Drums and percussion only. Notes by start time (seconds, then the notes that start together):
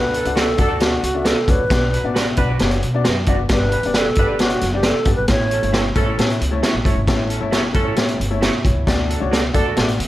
0.14 closed hi-hat
0.25 closed hi-hat
0.36 snare, closed hi-hat
0.58 kick, closed hi-hat
0.80 snare, closed hi-hat
1.04 closed hi-hat
1.25 snare, closed hi-hat
1.48 kick, closed hi-hat
1.70 kick, snare, closed hi-hat
1.94 closed hi-hat
2.16 snare, closed hi-hat
2.37 kick, closed hi-hat
2.59 snare, closed hi-hat
2.71 closed hi-hat
2.83 closed hi-hat
3.05 snare, closed hi-hat
3.26 kick, closed hi-hat
3.49 kick, snare, closed hi-hat
3.72 closed hi-hat
3.83 closed hi-hat
3.94 snare, closed hi-hat
4.15 kick, closed hi-hat
4.39 snare, closed hi-hat
4.50 closed hi-hat
4.61 snare, closed hi-hat
4.83 snare, closed hi-hat
5.05 kick, closed hi-hat
5.28 kick, snare, closed hi-hat
5.51 closed hi-hat
5.63 closed hi-hat
5.74 snare, closed hi-hat
5.95 kick, closed hi-hat
6.19 snare, closed hi-hat
6.30 closed hi-hat
6.41 closed hi-hat
6.63 snare, closed hi-hat
6.85 kick, closed hi-hat
7.08 kick, snare, closed hi-hat
7.30 closed hi-hat
7.52 snare, closed hi-hat
7.74 kick, closed hi-hat
7.96 snare, closed hi-hat
8.08 closed hi-hat
8.21 closed hi-hat
8.42 snare, closed hi-hat
8.65 kick, closed hi-hat
8.87 kick, snare, closed hi-hat
9.10 closed hi-hat
9.33 snare, closed hi-hat
9.54 kick, closed hi-hat
9.77 snare, closed hi-hat
9.89 closed hi-hat
10.00 closed hi-hat